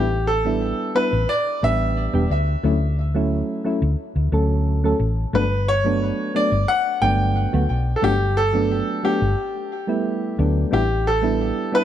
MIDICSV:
0, 0, Header, 1, 4, 480
1, 0, Start_track
1, 0, Tempo, 674157
1, 1881, Time_signature, 4, 2, 24, 8
1, 8430, End_track
2, 0, Start_track
2, 0, Title_t, "Grand piano"
2, 0, Program_c, 0, 0
2, 0, Note_on_c, 0, 67, 83
2, 195, Note_on_c, 0, 69, 84
2, 204, Note_off_c, 0, 67, 0
2, 650, Note_off_c, 0, 69, 0
2, 681, Note_on_c, 0, 71, 95
2, 919, Note_on_c, 0, 74, 102
2, 928, Note_off_c, 0, 71, 0
2, 1167, Note_off_c, 0, 74, 0
2, 1168, Note_on_c, 0, 76, 98
2, 1616, Note_off_c, 0, 76, 0
2, 3809, Note_on_c, 0, 71, 84
2, 4047, Note_on_c, 0, 73, 100
2, 4052, Note_off_c, 0, 71, 0
2, 4496, Note_off_c, 0, 73, 0
2, 4528, Note_on_c, 0, 74, 95
2, 4759, Note_on_c, 0, 78, 106
2, 4772, Note_off_c, 0, 74, 0
2, 4996, Note_on_c, 0, 79, 98
2, 5007, Note_off_c, 0, 78, 0
2, 5450, Note_off_c, 0, 79, 0
2, 5668, Note_on_c, 0, 69, 76
2, 5719, Note_off_c, 0, 69, 0
2, 5723, Note_on_c, 0, 67, 99
2, 5960, Note_on_c, 0, 69, 101
2, 5969, Note_off_c, 0, 67, 0
2, 6441, Note_on_c, 0, 67, 90
2, 6455, Note_off_c, 0, 69, 0
2, 7373, Note_off_c, 0, 67, 0
2, 7642, Note_on_c, 0, 67, 90
2, 7884, Note_on_c, 0, 69, 89
2, 7889, Note_off_c, 0, 67, 0
2, 8365, Note_on_c, 0, 71, 98
2, 8377, Note_off_c, 0, 69, 0
2, 8430, Note_off_c, 0, 71, 0
2, 8430, End_track
3, 0, Start_track
3, 0, Title_t, "Synth keys"
3, 0, Program_c, 1, 88
3, 318, Note_on_c, 1, 55, 76
3, 323, Note_on_c, 1, 59, 70
3, 327, Note_on_c, 1, 62, 66
3, 331, Note_on_c, 1, 64, 81
3, 649, Note_off_c, 1, 55, 0
3, 652, Note_off_c, 1, 59, 0
3, 654, Note_off_c, 1, 62, 0
3, 656, Note_off_c, 1, 64, 0
3, 676, Note_on_c, 1, 55, 71
3, 678, Note_on_c, 1, 59, 69
3, 684, Note_on_c, 1, 62, 67
3, 688, Note_on_c, 1, 64, 82
3, 786, Note_off_c, 1, 55, 0
3, 787, Note_off_c, 1, 59, 0
3, 790, Note_off_c, 1, 62, 0
3, 792, Note_off_c, 1, 64, 0
3, 1157, Note_on_c, 1, 55, 74
3, 1162, Note_on_c, 1, 59, 67
3, 1166, Note_on_c, 1, 62, 63
3, 1170, Note_on_c, 1, 67, 81
3, 1494, Note_off_c, 1, 55, 0
3, 1496, Note_off_c, 1, 59, 0
3, 1498, Note_off_c, 1, 62, 0
3, 1500, Note_off_c, 1, 67, 0
3, 1520, Note_on_c, 1, 55, 94
3, 1521, Note_on_c, 1, 59, 83
3, 1527, Note_on_c, 1, 62, 85
3, 1530, Note_on_c, 1, 67, 105
3, 1585, Note_off_c, 1, 55, 0
3, 1586, Note_off_c, 1, 59, 0
3, 1589, Note_off_c, 1, 62, 0
3, 1591, Note_off_c, 1, 67, 0
3, 1876, Note_on_c, 1, 54, 85
3, 1880, Note_on_c, 1, 57, 77
3, 1882, Note_on_c, 1, 61, 75
3, 1888, Note_on_c, 1, 64, 91
3, 1946, Note_off_c, 1, 54, 0
3, 1948, Note_off_c, 1, 57, 0
3, 1949, Note_off_c, 1, 61, 0
3, 1952, Note_off_c, 1, 64, 0
3, 2239, Note_on_c, 1, 54, 78
3, 2243, Note_on_c, 1, 57, 72
3, 2247, Note_on_c, 1, 61, 74
3, 2251, Note_on_c, 1, 64, 86
3, 2570, Note_off_c, 1, 54, 0
3, 2572, Note_off_c, 1, 57, 0
3, 2574, Note_off_c, 1, 61, 0
3, 2576, Note_off_c, 1, 64, 0
3, 2595, Note_on_c, 1, 54, 77
3, 2597, Note_on_c, 1, 57, 69
3, 2602, Note_on_c, 1, 61, 72
3, 2607, Note_on_c, 1, 64, 87
3, 2706, Note_off_c, 1, 54, 0
3, 2707, Note_off_c, 1, 57, 0
3, 2709, Note_off_c, 1, 61, 0
3, 2712, Note_off_c, 1, 64, 0
3, 3077, Note_on_c, 1, 54, 75
3, 3079, Note_on_c, 1, 57, 65
3, 3084, Note_on_c, 1, 61, 66
3, 3089, Note_on_c, 1, 69, 79
3, 3413, Note_off_c, 1, 54, 0
3, 3415, Note_off_c, 1, 57, 0
3, 3417, Note_off_c, 1, 61, 0
3, 3419, Note_off_c, 1, 69, 0
3, 3445, Note_on_c, 1, 54, 91
3, 3446, Note_on_c, 1, 57, 82
3, 3449, Note_on_c, 1, 61, 78
3, 3456, Note_on_c, 1, 69, 100
3, 3508, Note_off_c, 1, 54, 0
3, 3508, Note_off_c, 1, 57, 0
3, 3510, Note_off_c, 1, 61, 0
3, 3514, Note_off_c, 1, 69, 0
3, 3796, Note_on_c, 1, 54, 83
3, 3801, Note_on_c, 1, 57, 83
3, 3804, Note_on_c, 1, 59, 77
3, 3809, Note_on_c, 1, 62, 93
3, 3866, Note_off_c, 1, 54, 0
3, 3868, Note_off_c, 1, 57, 0
3, 3870, Note_off_c, 1, 59, 0
3, 3872, Note_off_c, 1, 62, 0
3, 4161, Note_on_c, 1, 54, 81
3, 4165, Note_on_c, 1, 57, 74
3, 4170, Note_on_c, 1, 59, 75
3, 4173, Note_on_c, 1, 62, 88
3, 4491, Note_off_c, 1, 54, 0
3, 4493, Note_off_c, 1, 57, 0
3, 4496, Note_off_c, 1, 59, 0
3, 4497, Note_off_c, 1, 62, 0
3, 4517, Note_on_c, 1, 54, 77
3, 4519, Note_on_c, 1, 57, 71
3, 4523, Note_on_c, 1, 59, 69
3, 4528, Note_on_c, 1, 62, 85
3, 4627, Note_off_c, 1, 54, 0
3, 4628, Note_off_c, 1, 57, 0
3, 4630, Note_off_c, 1, 59, 0
3, 4632, Note_off_c, 1, 62, 0
3, 4994, Note_on_c, 1, 54, 73
3, 4996, Note_on_c, 1, 57, 67
3, 5000, Note_on_c, 1, 59, 70
3, 5006, Note_on_c, 1, 62, 80
3, 5332, Note_off_c, 1, 54, 0
3, 5333, Note_off_c, 1, 57, 0
3, 5335, Note_off_c, 1, 59, 0
3, 5338, Note_off_c, 1, 62, 0
3, 5360, Note_on_c, 1, 54, 88
3, 5362, Note_on_c, 1, 57, 80
3, 5368, Note_on_c, 1, 59, 81
3, 5373, Note_on_c, 1, 66, 99
3, 5425, Note_off_c, 1, 54, 0
3, 5426, Note_off_c, 1, 57, 0
3, 5429, Note_off_c, 1, 59, 0
3, 5432, Note_off_c, 1, 66, 0
3, 5708, Note_on_c, 1, 54, 86
3, 5712, Note_on_c, 1, 57, 77
3, 5716, Note_on_c, 1, 59, 73
3, 5722, Note_on_c, 1, 62, 97
3, 5782, Note_off_c, 1, 54, 0
3, 5784, Note_off_c, 1, 57, 0
3, 5786, Note_off_c, 1, 59, 0
3, 5789, Note_off_c, 1, 62, 0
3, 6071, Note_on_c, 1, 54, 76
3, 6077, Note_on_c, 1, 57, 69
3, 6080, Note_on_c, 1, 59, 72
3, 6084, Note_on_c, 1, 62, 89
3, 6406, Note_off_c, 1, 54, 0
3, 6409, Note_off_c, 1, 57, 0
3, 6411, Note_off_c, 1, 59, 0
3, 6413, Note_off_c, 1, 62, 0
3, 6430, Note_on_c, 1, 54, 80
3, 6433, Note_on_c, 1, 57, 72
3, 6442, Note_on_c, 1, 59, 69
3, 6444, Note_on_c, 1, 62, 83
3, 6543, Note_off_c, 1, 54, 0
3, 6545, Note_off_c, 1, 57, 0
3, 6549, Note_off_c, 1, 59, 0
3, 6550, Note_off_c, 1, 62, 0
3, 7028, Note_on_c, 1, 55, 74
3, 7034, Note_on_c, 1, 57, 70
3, 7038, Note_on_c, 1, 59, 67
3, 7042, Note_on_c, 1, 64, 88
3, 7365, Note_off_c, 1, 55, 0
3, 7368, Note_off_c, 1, 57, 0
3, 7370, Note_off_c, 1, 59, 0
3, 7372, Note_off_c, 1, 64, 0
3, 7394, Note_on_c, 1, 54, 75
3, 7395, Note_on_c, 1, 57, 63
3, 7400, Note_on_c, 1, 59, 65
3, 7404, Note_on_c, 1, 62, 77
3, 7610, Note_off_c, 1, 54, 0
3, 7610, Note_off_c, 1, 57, 0
3, 7613, Note_off_c, 1, 59, 0
3, 7615, Note_off_c, 1, 62, 0
3, 7624, Note_on_c, 1, 55, 88
3, 7630, Note_on_c, 1, 59, 76
3, 7632, Note_on_c, 1, 62, 75
3, 7637, Note_on_c, 1, 64, 93
3, 7700, Note_off_c, 1, 55, 0
3, 7703, Note_off_c, 1, 59, 0
3, 7704, Note_off_c, 1, 62, 0
3, 7706, Note_off_c, 1, 64, 0
3, 7988, Note_on_c, 1, 55, 84
3, 7993, Note_on_c, 1, 59, 78
3, 7997, Note_on_c, 1, 62, 72
3, 8001, Note_on_c, 1, 64, 87
3, 8325, Note_off_c, 1, 55, 0
3, 8327, Note_off_c, 1, 59, 0
3, 8329, Note_off_c, 1, 62, 0
3, 8331, Note_off_c, 1, 64, 0
3, 8345, Note_on_c, 1, 55, 80
3, 8348, Note_on_c, 1, 59, 70
3, 8354, Note_on_c, 1, 62, 67
3, 8359, Note_on_c, 1, 64, 86
3, 8430, Note_off_c, 1, 55, 0
3, 8430, Note_off_c, 1, 59, 0
3, 8430, Note_off_c, 1, 62, 0
3, 8430, Note_off_c, 1, 64, 0
3, 8430, End_track
4, 0, Start_track
4, 0, Title_t, "Fingered electric bass"
4, 0, Program_c, 2, 33
4, 0, Note_on_c, 2, 33, 87
4, 508, Note_off_c, 2, 33, 0
4, 803, Note_on_c, 2, 33, 89
4, 887, Note_off_c, 2, 33, 0
4, 1161, Note_on_c, 2, 33, 90
4, 1469, Note_off_c, 2, 33, 0
4, 1518, Note_on_c, 2, 28, 98
4, 1605, Note_off_c, 2, 28, 0
4, 1638, Note_on_c, 2, 38, 74
4, 1814, Note_off_c, 2, 38, 0
4, 1877, Note_on_c, 2, 38, 88
4, 2427, Note_off_c, 2, 38, 0
4, 2719, Note_on_c, 2, 38, 91
4, 2805, Note_off_c, 2, 38, 0
4, 2959, Note_on_c, 2, 38, 80
4, 3045, Note_off_c, 2, 38, 0
4, 3076, Note_on_c, 2, 38, 88
4, 3506, Note_off_c, 2, 38, 0
4, 3556, Note_on_c, 2, 33, 82
4, 3733, Note_off_c, 2, 33, 0
4, 3797, Note_on_c, 2, 31, 86
4, 4347, Note_off_c, 2, 31, 0
4, 4641, Note_on_c, 2, 31, 90
4, 4726, Note_off_c, 2, 31, 0
4, 4997, Note_on_c, 2, 31, 101
4, 5307, Note_off_c, 2, 31, 0
4, 5365, Note_on_c, 2, 38, 96
4, 5448, Note_off_c, 2, 38, 0
4, 5479, Note_on_c, 2, 35, 72
4, 5654, Note_off_c, 2, 35, 0
4, 5715, Note_on_c, 2, 31, 86
4, 6266, Note_off_c, 2, 31, 0
4, 6563, Note_on_c, 2, 31, 88
4, 6647, Note_off_c, 2, 31, 0
4, 7396, Note_on_c, 2, 38, 80
4, 7573, Note_off_c, 2, 38, 0
4, 7636, Note_on_c, 2, 33, 92
4, 8187, Note_off_c, 2, 33, 0
4, 8430, End_track
0, 0, End_of_file